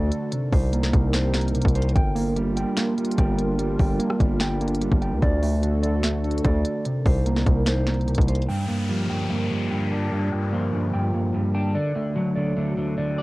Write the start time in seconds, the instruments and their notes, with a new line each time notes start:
Already playing: 808-style bass D2, analog synth pad D3 D4 F#4 A4, clean electric guitar D3 A3 D5
0.12 closed hi-hat
0.32 clean electric guitar C3, analog synth pad C3 C4 D#4 A#4, closed hi-hat
0.53 808-style bass C2, clean electric guitar C5, kick, open hi-hat
0.73 clean electric guitar A#3, closed hi-hat
0.83 snare
0.93 808-style bass C2, clean electric guitar C3, kick, closed hi-hat
1.13 clean electric guitar C5, finger snap, snare, closed hi-hat
1.34 clean electric guitar A#3, finger snap, snare, closed hi-hat
1.41 closed hi-hat
1.48 closed hi-hat
1.55 clean electric guitar C3, closed hi-hat
1.62 808-style bass C2, kick, closed hi-hat
1.68 closed hi-hat
1.75 clean electric guitar C5, closed hi-hat
1.82 closed hi-hat
1.89 closed hi-hat
1.95 808-style bass G1, analog synth pad G3 D4 F4, clean electric guitar G5, kick, closed hi-hat
2.15 clean electric guitar A#3, open hi-hat
2.36 clean electric guitar G3, closed hi-hat
2.57 clean electric guitar G5, closed hi-hat
2.77 clean electric guitar A#3, finger snap, snare, closed hi-hat
2.98 clean electric guitar G3, closed hi-hat
3.04 closed hi-hat
3.11 closed hi-hat
3.18 808-style bass G1, clean electric guitar G5, kick, closed hi-hat
3.38 closed hi-hat
3.58 clean electric guitar G3, closed hi-hat
3.79 808-style bass G1, clean electric guitar G5, kick, open hi-hat
3.99 clean electric guitar A#3, closed hi-hat
4.10 cross-stick
4.20 808-style bass G1, clean electric guitar G3, kick, closed hi-hat
4.40 clean electric guitar G5, finger snap, snare, closed hi-hat
4.61 clean electric guitar A#3, closed hi-hat
4.68 closed hi-hat
4.75 closed hi-hat
4.81 clean electric guitar G3, closed hi-hat
4.91 808-style bass G1, kick
5.02 clean electric guitar G5, closed hi-hat
5.12 808-style bass D2
5.22 808-style bass D2, analog synth pad D3 F#4 A4, clean electric guitar D5, kick, closed hi-hat
5.43 clean electric guitar A3, open hi-hat
5.63 clean electric guitar D3, closed hi-hat
5.83 clean electric guitar D5, closed hi-hat
6.03 clean electric guitar A3, finger snap, snare, closed hi-hat
6.24 clean electric guitar D3, closed hi-hat
6.31 closed hi-hat
6.38 closed hi-hat
6.45 808-style bass D2, clean electric guitar D5, kick, closed hi-hat
6.65 closed hi-hat
6.85 analog synth pad C3 C4 D#4 A#4, clean electric guitar C3, closed hi-hat
7.06 808-style bass C2, clean electric guitar C5, kick, open hi-hat
7.26 clean electric guitar A#3, closed hi-hat
7.36 snare
7.46 808-style bass C2, clean electric guitar C3, kick, closed hi-hat
7.66 clean electric guitar C5, finger snap, snare, closed hi-hat
7.87 clean electric guitar A#3, finger snap, snare, closed hi-hat
7.94 closed hi-hat
8.01 closed hi-hat
8.08 clean electric guitar C3, closed hi-hat
8.15 808-style bass C2, kick, closed hi-hat
8.21 closed hi-hat
8.28 clean electric guitar C5, closed hi-hat
8.35 closed hi-hat
8.42 closed hi-hat
8.48 clean electric guitar G2 G5, analog synth pad G2 D3 F4 A#4, downlifter
8.68 clean electric guitar G2 A#3
8.89 clean electric guitar F3 G3
9.10 clean electric guitar G2 G5
9.30 clean electric guitar G2 A#3
9.51 clean electric guitar G2 G3
9.71 clean electric guitar G2 G5
9.91 clean electric guitar D4
10.11 clean electric guitar G2 G3
10.32 clean electric guitar G2 G5
10.52 clean electric guitar F3 A#3
10.73 clean electric guitar G2 G3
10.93 clean electric guitar G2 G5
11.14 clean electric guitar G2 A#3
11.34 clean electric guitar G2 G3
11.54 clean electric guitar D4 G5
11.75 analog synth pad D2 F#4 A4, clean electric guitar D3 D5, swell
11.95 clean electric guitar D3 A3
12.16 clean electric guitar D3 F#3
12.36 clean electric guitar D3 D5
12.57 clean electric guitar D3 A3
12.77 clean electric guitar D3
12.98 clean electric guitar D3 D5
13.18 clean electric guitar D5